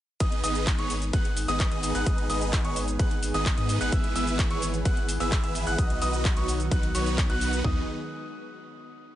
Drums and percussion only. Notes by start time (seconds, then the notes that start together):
0.20 kick, closed hi-hat, shaker
0.32 closed hi-hat
0.44 open hi-hat, shaker
0.55 closed hi-hat, shaker
0.67 kick, clap, closed hi-hat, shaker
0.79 closed hi-hat
0.90 open hi-hat, shaker
1.02 closed hi-hat, shaker
1.13 kick, closed hi-hat, shaker
1.25 closed hi-hat
1.37 open hi-hat, shaker
1.48 closed hi-hat, shaker
1.60 kick, clap, closed hi-hat, shaker
1.72 closed hi-hat
1.83 open hi-hat, shaker
1.95 closed hi-hat, shaker
2.06 kick, closed hi-hat, shaker
2.18 closed hi-hat
2.30 open hi-hat, shaker
2.41 closed hi-hat, shaker
2.53 kick, clap, closed hi-hat, shaker
2.65 closed hi-hat
2.76 open hi-hat, shaker
2.88 closed hi-hat, shaker
2.99 kick, closed hi-hat, shaker
3.11 closed hi-hat
3.23 open hi-hat, shaker
3.34 closed hi-hat, shaker
3.46 kick, clap, closed hi-hat, shaker
3.57 closed hi-hat
3.69 open hi-hat, shaker
3.81 closed hi-hat, shaker
3.92 kick, closed hi-hat, shaker
4.04 closed hi-hat
4.16 open hi-hat, shaker
4.27 closed hi-hat, shaker
4.39 kick, clap, closed hi-hat, shaker
4.51 closed hi-hat
4.62 open hi-hat, shaker
4.74 closed hi-hat, shaker
4.85 kick, closed hi-hat, shaker
4.97 closed hi-hat
5.09 open hi-hat, shaker
5.20 closed hi-hat, shaker
5.32 kick, clap, closed hi-hat, shaker
5.44 closed hi-hat
5.55 open hi-hat, shaker
5.67 closed hi-hat, shaker
5.78 kick, closed hi-hat, shaker
5.90 closed hi-hat
6.02 open hi-hat, shaker
6.13 closed hi-hat, shaker
6.25 kick, clap, closed hi-hat, shaker
6.37 closed hi-hat
6.48 open hi-hat, shaker
6.60 closed hi-hat, shaker
6.71 kick, closed hi-hat, shaker
6.83 closed hi-hat
6.95 open hi-hat, shaker
7.06 closed hi-hat, shaker
7.18 kick, clap, closed hi-hat, shaker
7.30 closed hi-hat
7.41 open hi-hat, shaker
7.53 closed hi-hat, shaker
7.64 kick, floor tom